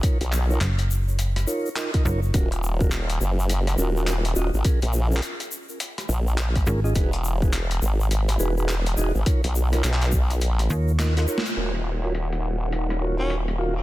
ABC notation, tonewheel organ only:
X:1
M:4/4
L:1/16
Q:"Swing 16ths" 1/4=104
K:Ebm
V:1 name="Tonewheel organ"
[^D^E^A^c] z2 [DEAc] z6 [DEAc] z [DEA^d] [DEAd] [DEAc] z | [DFGB] z2 [DFGB] z6 [DFGB] [DFGB] z2 [DFGe] z | [DFAB] z2 [DFAB] z8 z2 [DFAB] [DFAe] | [^D^F^G=B] z2 [DFGB] z6 [DFGB] [DFGB] z2 [DFG^d] z |
[^D^E^A^c] z2 [DEAc] z6 [DEAc] z [DEA^d] [DEAd] [DEAc] z | [FGBd] z2 [FGBd] z6 [FGBd] [FGBd] z2 [FGBf] z |]